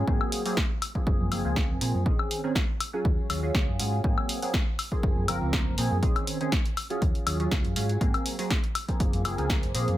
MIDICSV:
0, 0, Header, 1, 4, 480
1, 0, Start_track
1, 0, Tempo, 495868
1, 74, Time_signature, 4, 2, 24, 8
1, 9656, End_track
2, 0, Start_track
2, 0, Title_t, "Analog polysynth"
2, 0, Program_c, 0, 90
2, 70, Note_on_c, 0, 54, 97
2, 72, Note_on_c, 0, 58, 94
2, 75, Note_on_c, 0, 60, 91
2, 78, Note_on_c, 0, 68, 109
2, 409, Note_off_c, 0, 54, 0
2, 410, Note_off_c, 0, 58, 0
2, 411, Note_off_c, 0, 60, 0
2, 413, Note_off_c, 0, 68, 0
2, 438, Note_on_c, 0, 54, 91
2, 441, Note_on_c, 0, 58, 85
2, 444, Note_on_c, 0, 60, 84
2, 446, Note_on_c, 0, 68, 97
2, 545, Note_off_c, 0, 54, 0
2, 546, Note_off_c, 0, 58, 0
2, 548, Note_off_c, 0, 60, 0
2, 549, Note_off_c, 0, 68, 0
2, 920, Note_on_c, 0, 53, 82
2, 922, Note_on_c, 0, 58, 73
2, 925, Note_on_c, 0, 60, 72
2, 927, Note_on_c, 0, 68, 86
2, 1246, Note_off_c, 0, 53, 0
2, 1247, Note_off_c, 0, 58, 0
2, 1248, Note_off_c, 0, 60, 0
2, 1249, Note_off_c, 0, 68, 0
2, 1272, Note_on_c, 0, 53, 81
2, 1274, Note_on_c, 0, 58, 76
2, 1277, Note_on_c, 0, 60, 77
2, 1280, Note_on_c, 0, 68, 95
2, 1382, Note_off_c, 0, 53, 0
2, 1382, Note_off_c, 0, 58, 0
2, 1384, Note_off_c, 0, 60, 0
2, 1385, Note_off_c, 0, 68, 0
2, 1399, Note_on_c, 0, 53, 85
2, 1401, Note_on_c, 0, 58, 79
2, 1403, Note_on_c, 0, 60, 74
2, 1406, Note_on_c, 0, 68, 90
2, 1725, Note_off_c, 0, 53, 0
2, 1726, Note_off_c, 0, 58, 0
2, 1727, Note_off_c, 0, 60, 0
2, 1729, Note_off_c, 0, 68, 0
2, 1752, Note_on_c, 0, 53, 87
2, 1754, Note_on_c, 0, 58, 76
2, 1757, Note_on_c, 0, 60, 81
2, 1759, Note_on_c, 0, 68, 94
2, 1966, Note_off_c, 0, 53, 0
2, 1967, Note_off_c, 0, 58, 0
2, 1968, Note_off_c, 0, 60, 0
2, 1969, Note_off_c, 0, 68, 0
2, 1991, Note_on_c, 0, 51, 100
2, 1994, Note_on_c, 0, 60, 93
2, 1997, Note_on_c, 0, 61, 92
2, 1999, Note_on_c, 0, 68, 108
2, 2329, Note_off_c, 0, 51, 0
2, 2331, Note_off_c, 0, 60, 0
2, 2332, Note_off_c, 0, 61, 0
2, 2333, Note_off_c, 0, 68, 0
2, 2359, Note_on_c, 0, 51, 87
2, 2361, Note_on_c, 0, 60, 85
2, 2363, Note_on_c, 0, 61, 85
2, 2366, Note_on_c, 0, 68, 99
2, 2465, Note_off_c, 0, 51, 0
2, 2466, Note_off_c, 0, 60, 0
2, 2468, Note_off_c, 0, 61, 0
2, 2469, Note_off_c, 0, 68, 0
2, 2839, Note_on_c, 0, 54, 80
2, 2842, Note_on_c, 0, 61, 73
2, 2843, Note_on_c, 0, 65, 69
2, 2846, Note_on_c, 0, 68, 89
2, 3165, Note_off_c, 0, 54, 0
2, 3167, Note_off_c, 0, 61, 0
2, 3167, Note_off_c, 0, 65, 0
2, 3169, Note_off_c, 0, 68, 0
2, 3190, Note_on_c, 0, 54, 84
2, 3192, Note_on_c, 0, 61, 73
2, 3195, Note_on_c, 0, 65, 73
2, 3198, Note_on_c, 0, 68, 88
2, 3300, Note_off_c, 0, 54, 0
2, 3302, Note_off_c, 0, 61, 0
2, 3303, Note_off_c, 0, 65, 0
2, 3304, Note_off_c, 0, 68, 0
2, 3317, Note_on_c, 0, 54, 86
2, 3319, Note_on_c, 0, 61, 77
2, 3322, Note_on_c, 0, 65, 79
2, 3325, Note_on_c, 0, 68, 94
2, 3644, Note_off_c, 0, 54, 0
2, 3645, Note_off_c, 0, 61, 0
2, 3647, Note_off_c, 0, 65, 0
2, 3648, Note_off_c, 0, 68, 0
2, 3669, Note_on_c, 0, 54, 86
2, 3671, Note_on_c, 0, 61, 79
2, 3675, Note_on_c, 0, 65, 82
2, 3677, Note_on_c, 0, 68, 94
2, 3884, Note_off_c, 0, 54, 0
2, 3885, Note_off_c, 0, 61, 0
2, 3887, Note_off_c, 0, 65, 0
2, 3888, Note_off_c, 0, 68, 0
2, 3909, Note_on_c, 0, 54, 97
2, 3912, Note_on_c, 0, 58, 90
2, 3914, Note_on_c, 0, 60, 88
2, 3917, Note_on_c, 0, 68, 109
2, 4248, Note_off_c, 0, 54, 0
2, 4250, Note_off_c, 0, 58, 0
2, 4251, Note_off_c, 0, 60, 0
2, 4253, Note_off_c, 0, 68, 0
2, 4279, Note_on_c, 0, 54, 88
2, 4281, Note_on_c, 0, 58, 79
2, 4284, Note_on_c, 0, 60, 81
2, 4287, Note_on_c, 0, 68, 99
2, 4386, Note_off_c, 0, 54, 0
2, 4387, Note_off_c, 0, 58, 0
2, 4388, Note_off_c, 0, 60, 0
2, 4389, Note_off_c, 0, 68, 0
2, 4759, Note_on_c, 0, 53, 83
2, 4762, Note_on_c, 0, 58, 71
2, 4765, Note_on_c, 0, 60, 77
2, 4767, Note_on_c, 0, 68, 89
2, 5085, Note_off_c, 0, 53, 0
2, 5087, Note_off_c, 0, 58, 0
2, 5088, Note_off_c, 0, 60, 0
2, 5089, Note_off_c, 0, 68, 0
2, 5113, Note_on_c, 0, 53, 93
2, 5115, Note_on_c, 0, 58, 84
2, 5118, Note_on_c, 0, 60, 82
2, 5120, Note_on_c, 0, 70, 99
2, 5566, Note_off_c, 0, 53, 0
2, 5567, Note_off_c, 0, 58, 0
2, 5569, Note_off_c, 0, 60, 0
2, 5570, Note_off_c, 0, 70, 0
2, 5593, Note_on_c, 0, 53, 88
2, 5596, Note_on_c, 0, 58, 74
2, 5598, Note_on_c, 0, 60, 79
2, 5600, Note_on_c, 0, 68, 94
2, 5778, Note_off_c, 0, 53, 0
2, 5780, Note_off_c, 0, 58, 0
2, 5780, Note_off_c, 0, 60, 0
2, 5782, Note_off_c, 0, 68, 0
2, 5831, Note_on_c, 0, 51, 100
2, 5834, Note_on_c, 0, 60, 91
2, 5837, Note_on_c, 0, 61, 89
2, 5839, Note_on_c, 0, 68, 105
2, 6170, Note_off_c, 0, 51, 0
2, 6171, Note_off_c, 0, 60, 0
2, 6172, Note_off_c, 0, 61, 0
2, 6173, Note_off_c, 0, 68, 0
2, 6199, Note_on_c, 0, 51, 88
2, 6201, Note_on_c, 0, 60, 80
2, 6204, Note_on_c, 0, 61, 82
2, 6207, Note_on_c, 0, 68, 92
2, 6306, Note_off_c, 0, 51, 0
2, 6307, Note_off_c, 0, 60, 0
2, 6308, Note_off_c, 0, 61, 0
2, 6309, Note_off_c, 0, 68, 0
2, 6678, Note_on_c, 0, 54, 82
2, 6682, Note_on_c, 0, 61, 75
2, 6685, Note_on_c, 0, 65, 77
2, 6687, Note_on_c, 0, 68, 88
2, 7005, Note_off_c, 0, 54, 0
2, 7007, Note_off_c, 0, 61, 0
2, 7008, Note_off_c, 0, 65, 0
2, 7009, Note_off_c, 0, 68, 0
2, 7030, Note_on_c, 0, 54, 81
2, 7033, Note_on_c, 0, 61, 76
2, 7035, Note_on_c, 0, 65, 77
2, 7039, Note_on_c, 0, 68, 89
2, 7140, Note_off_c, 0, 54, 0
2, 7142, Note_off_c, 0, 61, 0
2, 7143, Note_off_c, 0, 65, 0
2, 7145, Note_off_c, 0, 68, 0
2, 7159, Note_on_c, 0, 54, 84
2, 7162, Note_on_c, 0, 61, 80
2, 7164, Note_on_c, 0, 65, 79
2, 7167, Note_on_c, 0, 68, 95
2, 7485, Note_off_c, 0, 54, 0
2, 7487, Note_off_c, 0, 61, 0
2, 7488, Note_off_c, 0, 65, 0
2, 7489, Note_off_c, 0, 68, 0
2, 7510, Note_on_c, 0, 54, 86
2, 7514, Note_on_c, 0, 61, 82
2, 7515, Note_on_c, 0, 65, 76
2, 7518, Note_on_c, 0, 68, 97
2, 7725, Note_off_c, 0, 54, 0
2, 7726, Note_off_c, 0, 61, 0
2, 7727, Note_off_c, 0, 65, 0
2, 7729, Note_off_c, 0, 68, 0
2, 7750, Note_on_c, 0, 54, 100
2, 7753, Note_on_c, 0, 58, 92
2, 7756, Note_on_c, 0, 60, 89
2, 7757, Note_on_c, 0, 68, 105
2, 8089, Note_off_c, 0, 54, 0
2, 8090, Note_off_c, 0, 58, 0
2, 8092, Note_off_c, 0, 60, 0
2, 8093, Note_off_c, 0, 68, 0
2, 8118, Note_on_c, 0, 54, 89
2, 8121, Note_on_c, 0, 58, 83
2, 8123, Note_on_c, 0, 60, 80
2, 8125, Note_on_c, 0, 68, 99
2, 8225, Note_off_c, 0, 54, 0
2, 8226, Note_off_c, 0, 58, 0
2, 8228, Note_off_c, 0, 60, 0
2, 8229, Note_off_c, 0, 68, 0
2, 8597, Note_on_c, 0, 53, 81
2, 8600, Note_on_c, 0, 58, 74
2, 8603, Note_on_c, 0, 60, 73
2, 8605, Note_on_c, 0, 68, 89
2, 8924, Note_off_c, 0, 53, 0
2, 8926, Note_off_c, 0, 58, 0
2, 8927, Note_off_c, 0, 60, 0
2, 8928, Note_off_c, 0, 68, 0
2, 8950, Note_on_c, 0, 53, 79
2, 8952, Note_on_c, 0, 58, 76
2, 8954, Note_on_c, 0, 60, 77
2, 8958, Note_on_c, 0, 68, 94
2, 9060, Note_off_c, 0, 53, 0
2, 9062, Note_off_c, 0, 58, 0
2, 9063, Note_off_c, 0, 60, 0
2, 9065, Note_off_c, 0, 68, 0
2, 9078, Note_on_c, 0, 53, 87
2, 9081, Note_on_c, 0, 58, 78
2, 9084, Note_on_c, 0, 60, 74
2, 9086, Note_on_c, 0, 68, 89
2, 9405, Note_off_c, 0, 53, 0
2, 9406, Note_off_c, 0, 58, 0
2, 9408, Note_off_c, 0, 60, 0
2, 9409, Note_off_c, 0, 68, 0
2, 9430, Note_on_c, 0, 53, 86
2, 9433, Note_on_c, 0, 58, 79
2, 9435, Note_on_c, 0, 60, 78
2, 9438, Note_on_c, 0, 68, 95
2, 9645, Note_off_c, 0, 53, 0
2, 9646, Note_off_c, 0, 58, 0
2, 9647, Note_off_c, 0, 60, 0
2, 9648, Note_off_c, 0, 68, 0
2, 9656, End_track
3, 0, Start_track
3, 0, Title_t, "Fingered electric bass"
3, 0, Program_c, 1, 33
3, 73, Note_on_c, 1, 44, 92
3, 171, Note_off_c, 1, 44, 0
3, 1033, Note_on_c, 1, 30, 82
3, 1131, Note_off_c, 1, 30, 0
3, 1162, Note_on_c, 1, 42, 77
3, 1247, Note_off_c, 1, 42, 0
3, 1274, Note_on_c, 1, 30, 81
3, 1371, Note_off_c, 1, 30, 0
3, 1400, Note_on_c, 1, 37, 98
3, 1643, Note_on_c, 1, 30, 94
3, 1657, Note_off_c, 1, 37, 0
3, 1727, Note_off_c, 1, 30, 0
3, 1753, Note_on_c, 1, 46, 95
3, 1851, Note_off_c, 1, 46, 0
3, 1880, Note_on_c, 1, 42, 94
3, 1966, Note_off_c, 1, 42, 0
3, 1994, Note_on_c, 1, 34, 95
3, 2091, Note_off_c, 1, 34, 0
3, 2952, Note_on_c, 1, 39, 82
3, 3050, Note_off_c, 1, 39, 0
3, 3193, Note_on_c, 1, 39, 70
3, 3380, Note_off_c, 1, 39, 0
3, 3562, Note_on_c, 1, 42, 99
3, 3647, Note_off_c, 1, 42, 0
3, 3673, Note_on_c, 1, 44, 91
3, 3860, Note_off_c, 1, 44, 0
3, 4872, Note_on_c, 1, 30, 78
3, 4970, Note_off_c, 1, 30, 0
3, 5002, Note_on_c, 1, 42, 76
3, 5087, Note_off_c, 1, 42, 0
3, 5114, Note_on_c, 1, 30, 80
3, 5211, Note_off_c, 1, 30, 0
3, 5242, Note_on_c, 1, 37, 101
3, 5482, Note_on_c, 1, 30, 89
3, 5497, Note_off_c, 1, 37, 0
3, 5567, Note_off_c, 1, 30, 0
3, 5593, Note_on_c, 1, 46, 97
3, 5691, Note_off_c, 1, 46, 0
3, 5720, Note_on_c, 1, 42, 94
3, 5806, Note_off_c, 1, 42, 0
3, 5834, Note_on_c, 1, 34, 97
3, 5931, Note_off_c, 1, 34, 0
3, 6794, Note_on_c, 1, 39, 84
3, 6891, Note_off_c, 1, 39, 0
3, 7034, Note_on_c, 1, 39, 75
3, 7220, Note_off_c, 1, 39, 0
3, 7403, Note_on_c, 1, 42, 97
3, 7487, Note_off_c, 1, 42, 0
3, 7514, Note_on_c, 1, 44, 95
3, 7700, Note_off_c, 1, 44, 0
3, 7754, Note_on_c, 1, 44, 101
3, 7851, Note_off_c, 1, 44, 0
3, 8713, Note_on_c, 1, 30, 78
3, 8811, Note_off_c, 1, 30, 0
3, 8839, Note_on_c, 1, 42, 84
3, 8925, Note_off_c, 1, 42, 0
3, 8951, Note_on_c, 1, 30, 82
3, 9050, Note_off_c, 1, 30, 0
3, 9079, Note_on_c, 1, 37, 103
3, 9321, Note_on_c, 1, 30, 94
3, 9335, Note_off_c, 1, 37, 0
3, 9406, Note_off_c, 1, 30, 0
3, 9432, Note_on_c, 1, 46, 101
3, 9530, Note_off_c, 1, 46, 0
3, 9563, Note_on_c, 1, 42, 92
3, 9647, Note_off_c, 1, 42, 0
3, 9656, End_track
4, 0, Start_track
4, 0, Title_t, "Drums"
4, 73, Note_on_c, 9, 36, 114
4, 170, Note_off_c, 9, 36, 0
4, 195, Note_on_c, 9, 54, 42
4, 202, Note_on_c, 9, 76, 80
4, 292, Note_off_c, 9, 54, 0
4, 298, Note_off_c, 9, 76, 0
4, 312, Note_on_c, 9, 46, 103
4, 409, Note_off_c, 9, 46, 0
4, 439, Note_on_c, 9, 54, 83
4, 441, Note_on_c, 9, 46, 61
4, 536, Note_off_c, 9, 54, 0
4, 538, Note_off_c, 9, 46, 0
4, 552, Note_on_c, 9, 38, 123
4, 553, Note_on_c, 9, 36, 119
4, 649, Note_off_c, 9, 38, 0
4, 650, Note_off_c, 9, 36, 0
4, 794, Note_on_c, 9, 46, 99
4, 794, Note_on_c, 9, 76, 59
4, 891, Note_off_c, 9, 46, 0
4, 891, Note_off_c, 9, 76, 0
4, 920, Note_on_c, 9, 54, 81
4, 921, Note_on_c, 9, 36, 62
4, 1017, Note_off_c, 9, 54, 0
4, 1018, Note_off_c, 9, 36, 0
4, 1034, Note_on_c, 9, 36, 119
4, 1130, Note_off_c, 9, 36, 0
4, 1159, Note_on_c, 9, 54, 41
4, 1256, Note_off_c, 9, 54, 0
4, 1275, Note_on_c, 9, 46, 111
4, 1275, Note_on_c, 9, 76, 75
4, 1371, Note_off_c, 9, 46, 0
4, 1371, Note_off_c, 9, 76, 0
4, 1403, Note_on_c, 9, 54, 86
4, 1500, Note_off_c, 9, 54, 0
4, 1513, Note_on_c, 9, 36, 120
4, 1513, Note_on_c, 9, 38, 123
4, 1610, Note_off_c, 9, 36, 0
4, 1610, Note_off_c, 9, 38, 0
4, 1755, Note_on_c, 9, 46, 109
4, 1851, Note_off_c, 9, 46, 0
4, 1884, Note_on_c, 9, 54, 79
4, 1981, Note_off_c, 9, 54, 0
4, 1993, Note_on_c, 9, 36, 116
4, 2090, Note_off_c, 9, 36, 0
4, 2119, Note_on_c, 9, 54, 42
4, 2124, Note_on_c, 9, 76, 81
4, 2216, Note_off_c, 9, 54, 0
4, 2220, Note_off_c, 9, 76, 0
4, 2235, Note_on_c, 9, 46, 102
4, 2332, Note_off_c, 9, 46, 0
4, 2358, Note_on_c, 9, 54, 81
4, 2455, Note_off_c, 9, 54, 0
4, 2473, Note_on_c, 9, 36, 127
4, 2475, Note_on_c, 9, 38, 127
4, 2570, Note_off_c, 9, 36, 0
4, 2572, Note_off_c, 9, 38, 0
4, 2715, Note_on_c, 9, 46, 112
4, 2715, Note_on_c, 9, 76, 60
4, 2812, Note_off_c, 9, 46, 0
4, 2812, Note_off_c, 9, 76, 0
4, 2846, Note_on_c, 9, 54, 78
4, 2943, Note_off_c, 9, 54, 0
4, 2952, Note_on_c, 9, 36, 125
4, 3049, Note_off_c, 9, 36, 0
4, 3081, Note_on_c, 9, 54, 42
4, 3177, Note_off_c, 9, 54, 0
4, 3193, Note_on_c, 9, 46, 111
4, 3193, Note_on_c, 9, 76, 77
4, 3290, Note_off_c, 9, 46, 0
4, 3290, Note_off_c, 9, 76, 0
4, 3328, Note_on_c, 9, 54, 84
4, 3424, Note_off_c, 9, 54, 0
4, 3433, Note_on_c, 9, 36, 120
4, 3433, Note_on_c, 9, 38, 124
4, 3529, Note_off_c, 9, 36, 0
4, 3529, Note_off_c, 9, 38, 0
4, 3674, Note_on_c, 9, 46, 114
4, 3771, Note_off_c, 9, 46, 0
4, 3796, Note_on_c, 9, 54, 85
4, 3893, Note_off_c, 9, 54, 0
4, 3912, Note_on_c, 9, 36, 123
4, 4009, Note_off_c, 9, 36, 0
4, 4031, Note_on_c, 9, 54, 37
4, 4043, Note_on_c, 9, 76, 83
4, 4128, Note_off_c, 9, 54, 0
4, 4140, Note_off_c, 9, 76, 0
4, 4154, Note_on_c, 9, 46, 109
4, 4251, Note_off_c, 9, 46, 0
4, 4283, Note_on_c, 9, 46, 62
4, 4284, Note_on_c, 9, 54, 80
4, 4380, Note_off_c, 9, 46, 0
4, 4381, Note_off_c, 9, 54, 0
4, 4392, Note_on_c, 9, 36, 122
4, 4394, Note_on_c, 9, 38, 117
4, 4489, Note_off_c, 9, 36, 0
4, 4490, Note_off_c, 9, 38, 0
4, 4636, Note_on_c, 9, 46, 110
4, 4636, Note_on_c, 9, 76, 62
4, 4732, Note_off_c, 9, 46, 0
4, 4732, Note_off_c, 9, 76, 0
4, 4756, Note_on_c, 9, 54, 77
4, 4760, Note_on_c, 9, 36, 64
4, 4853, Note_off_c, 9, 54, 0
4, 4857, Note_off_c, 9, 36, 0
4, 4872, Note_on_c, 9, 36, 117
4, 4873, Note_on_c, 9, 54, 68
4, 4969, Note_off_c, 9, 36, 0
4, 4970, Note_off_c, 9, 54, 0
4, 4999, Note_on_c, 9, 54, 36
4, 5096, Note_off_c, 9, 54, 0
4, 5114, Note_on_c, 9, 46, 104
4, 5114, Note_on_c, 9, 76, 85
4, 5210, Note_off_c, 9, 46, 0
4, 5210, Note_off_c, 9, 76, 0
4, 5234, Note_on_c, 9, 54, 88
4, 5331, Note_off_c, 9, 54, 0
4, 5353, Note_on_c, 9, 36, 119
4, 5353, Note_on_c, 9, 38, 117
4, 5450, Note_off_c, 9, 36, 0
4, 5450, Note_off_c, 9, 38, 0
4, 5593, Note_on_c, 9, 46, 108
4, 5690, Note_off_c, 9, 46, 0
4, 5714, Note_on_c, 9, 54, 79
4, 5811, Note_off_c, 9, 54, 0
4, 5833, Note_on_c, 9, 36, 113
4, 5835, Note_on_c, 9, 42, 62
4, 5930, Note_off_c, 9, 36, 0
4, 5932, Note_off_c, 9, 42, 0
4, 5960, Note_on_c, 9, 54, 35
4, 5963, Note_on_c, 9, 42, 37
4, 5963, Note_on_c, 9, 76, 88
4, 6057, Note_off_c, 9, 54, 0
4, 6059, Note_off_c, 9, 42, 0
4, 6059, Note_off_c, 9, 76, 0
4, 6073, Note_on_c, 9, 46, 99
4, 6170, Note_off_c, 9, 46, 0
4, 6202, Note_on_c, 9, 42, 35
4, 6203, Note_on_c, 9, 54, 74
4, 6299, Note_off_c, 9, 42, 0
4, 6300, Note_off_c, 9, 54, 0
4, 6313, Note_on_c, 9, 38, 112
4, 6314, Note_on_c, 9, 36, 119
4, 6314, Note_on_c, 9, 42, 61
4, 6410, Note_off_c, 9, 36, 0
4, 6410, Note_off_c, 9, 38, 0
4, 6410, Note_off_c, 9, 42, 0
4, 6442, Note_on_c, 9, 42, 38
4, 6445, Note_on_c, 9, 54, 40
4, 6539, Note_off_c, 9, 42, 0
4, 6542, Note_off_c, 9, 54, 0
4, 6555, Note_on_c, 9, 46, 99
4, 6555, Note_on_c, 9, 76, 69
4, 6652, Note_off_c, 9, 46, 0
4, 6652, Note_off_c, 9, 76, 0
4, 6676, Note_on_c, 9, 54, 71
4, 6683, Note_on_c, 9, 42, 37
4, 6773, Note_off_c, 9, 54, 0
4, 6780, Note_off_c, 9, 42, 0
4, 6787, Note_on_c, 9, 54, 59
4, 6794, Note_on_c, 9, 36, 118
4, 6794, Note_on_c, 9, 42, 62
4, 6884, Note_off_c, 9, 54, 0
4, 6891, Note_off_c, 9, 36, 0
4, 6891, Note_off_c, 9, 42, 0
4, 6920, Note_on_c, 9, 54, 39
4, 6922, Note_on_c, 9, 42, 38
4, 7017, Note_off_c, 9, 54, 0
4, 7019, Note_off_c, 9, 42, 0
4, 7034, Note_on_c, 9, 46, 106
4, 7034, Note_on_c, 9, 76, 78
4, 7131, Note_off_c, 9, 46, 0
4, 7131, Note_off_c, 9, 76, 0
4, 7158, Note_on_c, 9, 54, 79
4, 7163, Note_on_c, 9, 42, 37
4, 7255, Note_off_c, 9, 54, 0
4, 7260, Note_off_c, 9, 42, 0
4, 7274, Note_on_c, 9, 36, 117
4, 7274, Note_on_c, 9, 38, 119
4, 7275, Note_on_c, 9, 42, 62
4, 7371, Note_off_c, 9, 36, 0
4, 7371, Note_off_c, 9, 38, 0
4, 7371, Note_off_c, 9, 42, 0
4, 7402, Note_on_c, 9, 42, 37
4, 7498, Note_off_c, 9, 42, 0
4, 7514, Note_on_c, 9, 46, 110
4, 7610, Note_off_c, 9, 46, 0
4, 7642, Note_on_c, 9, 42, 37
4, 7646, Note_on_c, 9, 54, 80
4, 7739, Note_off_c, 9, 42, 0
4, 7740, Note_off_c, 9, 54, 0
4, 7740, Note_on_c, 9, 54, 57
4, 7754, Note_on_c, 9, 36, 113
4, 7755, Note_on_c, 9, 42, 63
4, 7837, Note_off_c, 9, 54, 0
4, 7850, Note_off_c, 9, 36, 0
4, 7852, Note_off_c, 9, 42, 0
4, 7882, Note_on_c, 9, 42, 40
4, 7882, Note_on_c, 9, 76, 88
4, 7979, Note_off_c, 9, 42, 0
4, 7979, Note_off_c, 9, 76, 0
4, 7993, Note_on_c, 9, 46, 98
4, 8089, Note_off_c, 9, 46, 0
4, 8121, Note_on_c, 9, 46, 54
4, 8218, Note_off_c, 9, 46, 0
4, 8233, Note_on_c, 9, 36, 116
4, 8233, Note_on_c, 9, 38, 108
4, 8233, Note_on_c, 9, 42, 67
4, 8329, Note_off_c, 9, 38, 0
4, 8330, Note_off_c, 9, 36, 0
4, 8330, Note_off_c, 9, 42, 0
4, 8360, Note_on_c, 9, 42, 39
4, 8360, Note_on_c, 9, 54, 36
4, 8457, Note_off_c, 9, 42, 0
4, 8457, Note_off_c, 9, 54, 0
4, 8472, Note_on_c, 9, 46, 93
4, 8472, Note_on_c, 9, 76, 66
4, 8569, Note_off_c, 9, 46, 0
4, 8569, Note_off_c, 9, 76, 0
4, 8599, Note_on_c, 9, 54, 72
4, 8601, Note_on_c, 9, 36, 57
4, 8601, Note_on_c, 9, 42, 42
4, 8696, Note_off_c, 9, 54, 0
4, 8698, Note_off_c, 9, 36, 0
4, 8698, Note_off_c, 9, 42, 0
4, 8713, Note_on_c, 9, 36, 108
4, 8713, Note_on_c, 9, 42, 62
4, 8716, Note_on_c, 9, 54, 65
4, 8810, Note_off_c, 9, 36, 0
4, 8810, Note_off_c, 9, 42, 0
4, 8813, Note_off_c, 9, 54, 0
4, 8837, Note_on_c, 9, 54, 39
4, 8842, Note_on_c, 9, 42, 40
4, 8934, Note_off_c, 9, 54, 0
4, 8939, Note_off_c, 9, 42, 0
4, 8954, Note_on_c, 9, 46, 98
4, 8954, Note_on_c, 9, 76, 84
4, 9051, Note_off_c, 9, 46, 0
4, 9051, Note_off_c, 9, 76, 0
4, 9074, Note_on_c, 9, 54, 79
4, 9084, Note_on_c, 9, 42, 38
4, 9170, Note_off_c, 9, 54, 0
4, 9180, Note_off_c, 9, 42, 0
4, 9193, Note_on_c, 9, 36, 113
4, 9195, Note_on_c, 9, 38, 115
4, 9196, Note_on_c, 9, 42, 67
4, 9290, Note_off_c, 9, 36, 0
4, 9292, Note_off_c, 9, 38, 0
4, 9292, Note_off_c, 9, 42, 0
4, 9323, Note_on_c, 9, 42, 39
4, 9420, Note_off_c, 9, 42, 0
4, 9434, Note_on_c, 9, 46, 104
4, 9531, Note_off_c, 9, 46, 0
4, 9563, Note_on_c, 9, 42, 36
4, 9564, Note_on_c, 9, 54, 64
4, 9656, Note_off_c, 9, 42, 0
4, 9656, Note_off_c, 9, 54, 0
4, 9656, End_track
0, 0, End_of_file